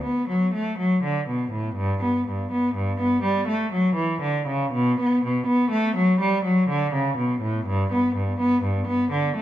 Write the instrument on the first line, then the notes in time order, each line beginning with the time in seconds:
cello
0.04 B3
0.28 F#3
0.54 A3
0.79 F#3
1.03 D3
1.28 B2
1.51 A2
1.76 G2
2.03 B3
2.28 G2
2.51 B3
2.74 G2
3.00 B3
3.23 G3
3.48 A3
3.72 F#3
3.95 E3
4.22 D3
4.47 C#3
4.72 B2
5.00 B3
5.24 B2
5.46 B3
5.70 A3
5.96 F#3
6.20 G3
6.44 F#3
6.69 D3
6.93 C#3
7.17 B2
7.41 A2
7.66 G2
7.92 B3
8.16 G2
8.40 B3
8.63 G2
8.87 B3
9.11 D3
9.36 A3